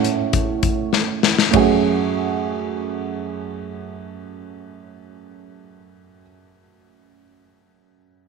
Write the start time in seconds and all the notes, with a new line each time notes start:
Already playing: A2 A3 C#4 A4 F#5
0.05 closed hi-hat
0.33 kick, closed hi-hat
0.63 kick, closed hi-hat
0.93 snare
1.23 snare
1.39 snare
1.51 F#2 A3 C#4 F#4, kick, ride
1.56 G#4